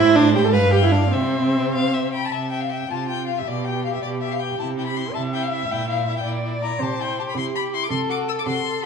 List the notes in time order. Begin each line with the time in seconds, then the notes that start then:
Already playing: A2 E4 E5
0.00 C5
0.16 D4 D5
0.35 G4 G5
0.45 A4 A5
0.53 G2 B4 F5 B5
0.72 G4 G5
0.83 E4 E5
0.92 D4 D5
1.11 C3 C4 C5 E5
1.74 F5
1.94 E5
2.13 G5 B5
2.25 A5
2.31 C3 E5 A5
2.50 E5 G5
2.61 F5
2.69 E5 G5
2.89 C3 F4 A5
3.08 F4 G5
3.27 F4 F5
3.38 E5
3.46 B2 G4 D5
3.65 G4 G5
3.84 G4 F5
3.94 E5
4.02 B2 G4 D5
4.22 G4 E5
4.32 F5
4.39 G4 G5
4.59 C3 E4 A5
4.77 E4 G5
4.86 B5
4.96 E4 C6
5.14 C3 E4 E5 A5
5.34 E4 G5
5.43 F5
5.51 E4 E5
5.69 A#2 E4 G5
5.88 E4 F5
6.07 E4 E5
6.17 G5
6.24 A#2 E4 D5
6.44 E4
6.61 E4 A#5
6.80 C3 G4 C5 A5
7.00 E4 G5
7.19 G4 A5
7.29 B5
7.35 C3 E4 G4 C6
7.55 G4 B5
7.74 E4 C6
7.83 D6
7.90 C3 A4 C6
8.09 F#4 D6
8.28 A4 E6
8.39 D6
8.46 C3 F#4 A4 C6
8.64 A4